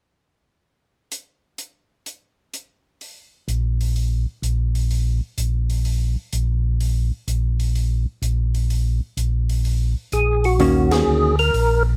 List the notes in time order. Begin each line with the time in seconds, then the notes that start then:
1.12 closed hi-hat
1.58 closed hi-hat
2.06 closed hi-hat
2.54 closed hi-hat
3.01 open hi-hat
3.48 A#1, closed hi-hat
3.81 open hi-hat
3.96 open hi-hat
4.42 A#1, closed hi-hat
4.75 open hi-hat
4.91 open hi-hat
5.38 A#1, closed hi-hat
5.70 open hi-hat
5.85 open hi-hat
6.33 A#1, closed hi-hat
6.80 open hi-hat
7.27 A#1, closed hi-hat
7.60 open hi-hat
7.75 open hi-hat
8.22 A#1, closed hi-hat
8.55 open hi-hat
8.70 open hi-hat
9.17 A#1, closed hi-hat
9.49 open hi-hat
9.65 open hi-hat
10.12 A#1 G#4, closed hi-hat
10.44 F#4, open hi-hat
10.59 D#2 D#3 A#3 C#4 F#4, open hi-hat
10.91 G#4, snare, ride
11.07 D2
11.39 A#4, open hi-hat
11.54 A#1, open hi-hat